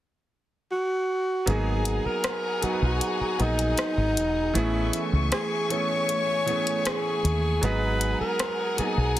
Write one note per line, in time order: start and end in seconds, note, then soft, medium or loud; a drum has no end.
0.71 1.50 F#4 medium
1.46 1.98 G#1 medium
1.46 2.29 F#3 medium
1.46 2.29 A#3 medium
1.46 2.30 B3 medium
1.46 2.30 D#4 medium
1.46 4.52 G#4 medium
1.46 2.08 G#4 medium
1.46 2.31 G#4 medium
1.46 4.52 F#5 medium
1.46 4.52 G#5 medium
1.46 4.52 A#5 medium
1.46 closed hi-hat medium
1.85 closed hi-hat medium
2.05 2.65 A#4 medium
2.05 muted fingered electric bass stroke soft
2.24 cross-stick loud
2.24 closed hi-hat medium
2.61 3.17 F#3 medium
2.61 3.18 B3 medium
2.61 3.18 D#4 medium
2.61 2.83 F#4 medium
2.61 2.64 A#4 medium
2.61 2.70 A#4 medium
2.61 muted fingered electric bass stroke soft
2.61 closed hi-hat medium
2.72 3.22 B4 medium
2.82 2.99 B1 medium
2.82 3.43 F#4 medium
3.01 closed hi-hat medium
3.21 muted fingered electric bass stroke soft
3.38 3.74 A#1 medium
3.38 4.21 F#3 medium
3.38 4.22 A#3 medium
3.38 4.22 B3 medium
3.38 4.23 D#4 medium
3.38 4.58 D#4 medium
3.38 4.23 G#4 medium
3.38 closed hi-hat soft
3.59 closed hi-hat medium
3.78 cross-stick loud
3.78 closed hi-hat medium
3.97 4.16 G#1 medium
4.16 4.50 E1 medium
4.16 closed hi-hat medium
4.54 4.89 A1 loud
4.54 5.37 E3 medium
4.54 5.37 A3 medium
4.54 7.59 A3 medium
4.54 5.38 B3 medium
4.54 5.38 C#4 medium
4.54 5.06 E4 medium
4.54 5.38 G#4 loud
4.54 7.60 E5 medium
4.54 7.60 G#5 medium
4.54 7.59 C#6 medium
4.54 closed hi-hat medium
4.93 closed hi-hat medium
5.13 5.30 C#2 medium
5.32 5.73 G#4 medium
5.32 cross-stick loud
5.32 closed hi-hat medium
5.69 6.25 E3 medium
5.69 6.25 A3 medium
5.69 6.26 B3 medium
5.69 6.26 C#4 medium
5.69 6.27 G#4 medium
5.69 6.88 C#5 loud
5.69 closed hi-hat medium
6.09 closed hi-hat medium
6.46 7.29 E3 medium
6.46 7.29 A3 medium
6.46 7.30 B3 medium
6.46 7.30 C#4 medium
6.46 7.31 G#4 medium
6.46 closed hi-hat soft
6.67 closed hi-hat medium
6.85 7.65 G#4 medium
6.85 cross-stick loud
6.85 closed hi-hat medium
7.24 7.58 D#2 medium
7.24 closed hi-hat medium
7.61 8.13 G#1 medium
7.61 8.44 F#3 medium
7.61 8.45 G#3 medium
7.61 8.45 B3 medium
7.61 8.46 D#4 medium
7.61 9.20 G#4 medium
7.61 8.46 G#4 loud
7.61 8.20 B4 medium
7.61 9.20 F#5 medium
7.61 9.20 G#5 medium
7.61 9.20 A#5 medium
7.61 closed hi-hat medium
8.01 closed hi-hat medium
8.20 8.81 A#4 medium
8.20 muted fingered electric bass stroke soft
8.39 cross-stick loud
8.39 closed hi-hat medium
8.77 9.20 F#3 medium
8.77 9.20 A#3 medium
8.77 9.20 B3 medium
8.77 9.20 D#4 medium
8.77 9.17 G#4 medium
8.77 9.20 G#4 medium
8.77 muted fingered electric bass stroke soft
8.77 closed hi-hat medium
8.97 9.14 B1 medium
9.17 closed hi-hat medium